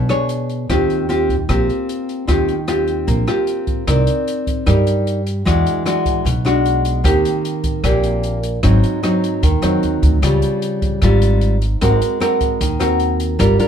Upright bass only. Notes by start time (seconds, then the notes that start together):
0.70 D#2
1.49 A#1
2.28 D#2
3.08 A#1
3.87 C2
4.67 G2
5.46 E2
6.25 B1
7.04 D#2
7.84 A#1
8.63 G#1
9.43 D#2
9.63 F2
9.83 D#2
10.02 D2
10.22 C#2
11.02 G#1
11.81 G#1
12.61 D#2
13.39 G1